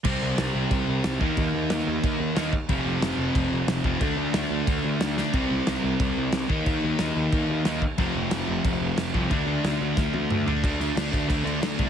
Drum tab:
CC |x-x-x-x-|x-x-x-x-|x-x-x-x-|x-x-x-x-|
SD |--o---o-|--o---o-|--o---o-|--o---oo|
T1 |--------|--------|--------|--------|
T2 |--------|--------|--------|--------|
FT |--------|--------|--------|--------|
BD |o---o--o|o---o--o|o---o--o|o---o---|

CC |x-x-x-x-|x-x-x-x-|x-x-x-x-|x-x-----|
SD |--o---o-|--o---o-|--o---o-|--o-o---|
T1 |--------|--------|--------|-----o--|
T2 |--------|--------|--------|------o-|
FT |--------|--------|--------|-------o|
BD |o---o--o|o---o--o|o---o--o|o---o---|

CC |xxxxxxxx|
SD |--o---o-|
T1 |--------|
T2 |--------|
FT |--------|
BD |o--oo--o|